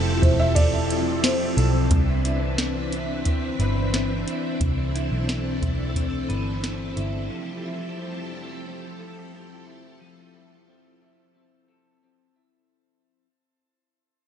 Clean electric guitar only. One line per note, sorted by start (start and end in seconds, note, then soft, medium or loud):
0.00 1.91 F3 medium
0.00 1.23 C4 medium
0.00 0.22 E4 medium
0.00 0.54 A4 medium
0.22 0.89 E4 medium
0.55 1.56 A4 medium
0.90 2.25 E4 medium
1.24 2.58 C4 medium
1.57 1.97 A4 medium
1.91 4.60 C3 medium
2.25 2.92 E4 medium
2.58 3.26 C4 soft
2.92 4.27 E4 medium
3.26 3.94 C4 medium
3.60 6.28 B4 medium
3.94 5.28 C4 medium
4.28 4.95 E4 soft
4.95 5.61 E4 medium
5.28 5.94 C4 medium
5.61 6.96 E4 medium
5.95 6.62 C4 medium
6.29 7.37 B4 medium
6.62 7.97 C4 soft
6.96 7.64 E4 soft
7.30 10.00 F3 medium
7.64 8.32 E4 medium
7.98 8.66 C4 soft
8.32 8.49 D4 soft
8.49 9.66 E4 soft
8.66 9.33 C4 medium
8.99 11.68 A4 medium
9.34 10.68 C4 soft
9.67 10.34 E4 soft
10.01 13.26 F3 medium
10.34 11.02 E4 medium
10.68 11.35 C4 soft
11.02 12.35 E4 soft
11.36 12.02 C4 soft
11.68 13.26 A4 medium
12.03 13.26 C4 soft
12.36 13.26 E4 soft